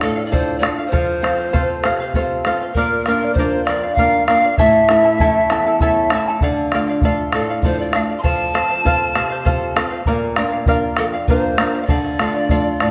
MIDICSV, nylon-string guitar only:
0, 0, Header, 1, 2, 480
1, 0, Start_track
1, 0, Key_signature, -1, "minor"
1, 0, Tempo, 608519
1, 737, Time_signature, 6, 3, 24, 8
1, 10183, End_track
2, 0, Start_track
2, 0, Title_t, "Nylon-string guitar"
2, 0, Program_c, 0, 24
2, 0, Note_on_c, 0, 62, 42
2, 0, Note_on_c, 0, 65, 42
2, 0, Note_on_c, 0, 69, 46
2, 12, Note_on_c, 0, 45, 56
2, 156, Note_off_c, 0, 62, 0
2, 157, Note_off_c, 0, 65, 0
2, 160, Note_off_c, 0, 69, 0
2, 243, Note_on_c, 0, 62, 38
2, 245, Note_on_c, 0, 65, 36
2, 251, Note_on_c, 0, 69, 43
2, 476, Note_off_c, 0, 62, 0
2, 477, Note_off_c, 0, 65, 0
2, 479, Note_off_c, 0, 69, 0
2, 480, Note_off_c, 0, 45, 0
2, 483, Note_on_c, 0, 62, 44
2, 487, Note_on_c, 0, 65, 37
2, 494, Note_on_c, 0, 69, 46
2, 682, Note_off_c, 0, 62, 0
2, 682, Note_off_c, 0, 65, 0
2, 683, Note_off_c, 0, 69, 0
2, 725, Note_on_c, 0, 53, 61
2, 965, Note_on_c, 0, 60, 41
2, 969, Note_on_c, 0, 65, 37
2, 973, Note_on_c, 0, 69, 44
2, 1197, Note_off_c, 0, 53, 0
2, 1200, Note_off_c, 0, 60, 0
2, 1203, Note_off_c, 0, 65, 0
2, 1203, Note_off_c, 0, 69, 0
2, 1208, Note_on_c, 0, 60, 44
2, 1214, Note_on_c, 0, 65, 42
2, 1218, Note_on_c, 0, 69, 46
2, 1460, Note_on_c, 0, 48, 61
2, 1597, Note_off_c, 0, 60, 0
2, 1598, Note_off_c, 0, 65, 0
2, 1598, Note_off_c, 0, 69, 0
2, 1695, Note_on_c, 0, 60, 45
2, 1697, Note_on_c, 0, 65, 40
2, 1701, Note_on_c, 0, 69, 43
2, 1925, Note_off_c, 0, 48, 0
2, 1931, Note_off_c, 0, 60, 0
2, 1932, Note_off_c, 0, 69, 0
2, 1933, Note_off_c, 0, 65, 0
2, 1940, Note_on_c, 0, 60, 46
2, 1944, Note_on_c, 0, 65, 42
2, 1944, Note_on_c, 0, 69, 47
2, 2131, Note_off_c, 0, 60, 0
2, 2132, Note_off_c, 0, 69, 0
2, 2133, Note_off_c, 0, 65, 0
2, 2181, Note_on_c, 0, 46, 58
2, 2424, Note_on_c, 0, 58, 40
2, 2432, Note_on_c, 0, 62, 36
2, 2437, Note_on_c, 0, 65, 43
2, 2645, Note_off_c, 0, 46, 0
2, 2653, Note_off_c, 0, 58, 0
2, 2656, Note_off_c, 0, 62, 0
2, 2657, Note_off_c, 0, 65, 0
2, 2662, Note_on_c, 0, 58, 43
2, 2665, Note_on_c, 0, 62, 42
2, 2668, Note_on_c, 0, 65, 47
2, 2901, Note_on_c, 0, 41, 55
2, 3044, Note_off_c, 0, 58, 0
2, 3047, Note_off_c, 0, 62, 0
2, 3047, Note_off_c, 0, 65, 0
2, 3138, Note_on_c, 0, 58, 44
2, 3142, Note_on_c, 0, 62, 38
2, 3145, Note_on_c, 0, 65, 47
2, 3365, Note_off_c, 0, 41, 0
2, 3365, Note_off_c, 0, 58, 0
2, 3371, Note_off_c, 0, 62, 0
2, 3374, Note_off_c, 0, 65, 0
2, 3375, Note_on_c, 0, 58, 42
2, 3380, Note_on_c, 0, 62, 37
2, 3383, Note_on_c, 0, 65, 47
2, 3568, Note_off_c, 0, 58, 0
2, 3571, Note_off_c, 0, 62, 0
2, 3573, Note_off_c, 0, 65, 0
2, 3624, Note_on_c, 0, 45, 57
2, 3857, Note_on_c, 0, 57, 44
2, 3860, Note_on_c, 0, 61, 39
2, 3865, Note_on_c, 0, 64, 49
2, 4084, Note_off_c, 0, 57, 0
2, 4086, Note_off_c, 0, 45, 0
2, 4091, Note_off_c, 0, 61, 0
2, 4093, Note_off_c, 0, 64, 0
2, 4093, Note_on_c, 0, 57, 42
2, 4099, Note_on_c, 0, 61, 40
2, 4104, Note_on_c, 0, 64, 47
2, 4339, Note_on_c, 0, 40, 58
2, 4479, Note_off_c, 0, 57, 0
2, 4483, Note_off_c, 0, 61, 0
2, 4485, Note_off_c, 0, 64, 0
2, 4574, Note_on_c, 0, 57, 40
2, 4580, Note_on_c, 0, 61, 36
2, 4584, Note_on_c, 0, 64, 42
2, 4804, Note_off_c, 0, 40, 0
2, 4810, Note_off_c, 0, 57, 0
2, 4813, Note_off_c, 0, 61, 0
2, 4815, Note_off_c, 0, 64, 0
2, 4819, Note_on_c, 0, 57, 41
2, 4824, Note_on_c, 0, 61, 37
2, 4825, Note_on_c, 0, 64, 50
2, 5011, Note_off_c, 0, 57, 0
2, 5013, Note_off_c, 0, 61, 0
2, 5014, Note_off_c, 0, 64, 0
2, 5065, Note_on_c, 0, 50, 60
2, 5299, Note_on_c, 0, 57, 43
2, 5305, Note_on_c, 0, 62, 38
2, 5309, Note_on_c, 0, 65, 43
2, 5527, Note_off_c, 0, 50, 0
2, 5534, Note_off_c, 0, 57, 0
2, 5535, Note_off_c, 0, 62, 0
2, 5540, Note_off_c, 0, 65, 0
2, 5542, Note_on_c, 0, 57, 45
2, 5547, Note_on_c, 0, 62, 38
2, 5550, Note_on_c, 0, 65, 47
2, 5775, Note_on_c, 0, 45, 52
2, 5925, Note_off_c, 0, 57, 0
2, 5926, Note_off_c, 0, 62, 0
2, 5929, Note_off_c, 0, 65, 0
2, 6010, Note_on_c, 0, 57, 41
2, 6016, Note_on_c, 0, 62, 39
2, 6022, Note_on_c, 0, 65, 42
2, 6242, Note_off_c, 0, 45, 0
2, 6248, Note_off_c, 0, 57, 0
2, 6251, Note_off_c, 0, 62, 0
2, 6254, Note_off_c, 0, 65, 0
2, 6258, Note_on_c, 0, 57, 43
2, 6262, Note_on_c, 0, 62, 40
2, 6264, Note_on_c, 0, 65, 45
2, 6450, Note_off_c, 0, 57, 0
2, 6451, Note_off_c, 0, 62, 0
2, 6453, Note_off_c, 0, 65, 0
2, 6501, Note_on_c, 0, 53, 53
2, 6739, Note_on_c, 0, 60, 43
2, 6740, Note_on_c, 0, 65, 39
2, 6744, Note_on_c, 0, 69, 50
2, 6965, Note_off_c, 0, 53, 0
2, 6967, Note_off_c, 0, 60, 0
2, 6971, Note_off_c, 0, 69, 0
2, 6972, Note_off_c, 0, 65, 0
2, 6977, Note_on_c, 0, 60, 43
2, 6980, Note_on_c, 0, 65, 41
2, 6982, Note_on_c, 0, 69, 48
2, 7221, Note_on_c, 0, 48, 57
2, 7361, Note_off_c, 0, 60, 0
2, 7363, Note_off_c, 0, 69, 0
2, 7364, Note_off_c, 0, 65, 0
2, 7456, Note_on_c, 0, 60, 43
2, 7461, Note_on_c, 0, 65, 40
2, 7465, Note_on_c, 0, 69, 46
2, 7684, Note_off_c, 0, 48, 0
2, 7687, Note_off_c, 0, 60, 0
2, 7692, Note_off_c, 0, 65, 0
2, 7696, Note_off_c, 0, 69, 0
2, 7697, Note_on_c, 0, 60, 43
2, 7702, Note_on_c, 0, 65, 40
2, 7705, Note_on_c, 0, 69, 49
2, 7889, Note_off_c, 0, 60, 0
2, 7892, Note_off_c, 0, 65, 0
2, 7894, Note_off_c, 0, 69, 0
2, 7949, Note_on_c, 0, 46, 55
2, 8185, Note_on_c, 0, 58, 43
2, 8189, Note_on_c, 0, 62, 42
2, 8192, Note_on_c, 0, 65, 47
2, 8404, Note_off_c, 0, 58, 0
2, 8407, Note_off_c, 0, 62, 0
2, 8408, Note_off_c, 0, 46, 0
2, 8408, Note_off_c, 0, 65, 0
2, 8413, Note_on_c, 0, 58, 42
2, 8417, Note_on_c, 0, 65, 49
2, 8419, Note_on_c, 0, 62, 37
2, 8662, Note_on_c, 0, 41, 51
2, 8798, Note_off_c, 0, 58, 0
2, 8800, Note_off_c, 0, 62, 0
2, 8800, Note_off_c, 0, 65, 0
2, 8900, Note_on_c, 0, 58, 44
2, 8905, Note_on_c, 0, 62, 40
2, 8911, Note_on_c, 0, 65, 42
2, 9122, Note_off_c, 0, 58, 0
2, 9124, Note_off_c, 0, 41, 0
2, 9126, Note_off_c, 0, 62, 0
2, 9132, Note_on_c, 0, 58, 42
2, 9134, Note_off_c, 0, 65, 0
2, 9135, Note_on_c, 0, 62, 41
2, 9143, Note_on_c, 0, 65, 48
2, 9325, Note_off_c, 0, 58, 0
2, 9327, Note_off_c, 0, 62, 0
2, 9332, Note_off_c, 0, 65, 0
2, 9379, Note_on_c, 0, 50, 59
2, 9618, Note_on_c, 0, 57, 43
2, 9622, Note_on_c, 0, 62, 40
2, 9625, Note_on_c, 0, 65, 50
2, 9841, Note_off_c, 0, 50, 0
2, 9846, Note_off_c, 0, 57, 0
2, 9852, Note_off_c, 0, 62, 0
2, 9854, Note_off_c, 0, 65, 0
2, 9856, Note_on_c, 0, 57, 42
2, 9861, Note_on_c, 0, 62, 41
2, 9865, Note_on_c, 0, 65, 49
2, 10106, Note_on_c, 0, 45, 53
2, 10183, Note_off_c, 0, 45, 0
2, 10183, Note_off_c, 0, 57, 0
2, 10183, Note_off_c, 0, 62, 0
2, 10183, Note_off_c, 0, 65, 0
2, 10183, End_track
0, 0, End_of_file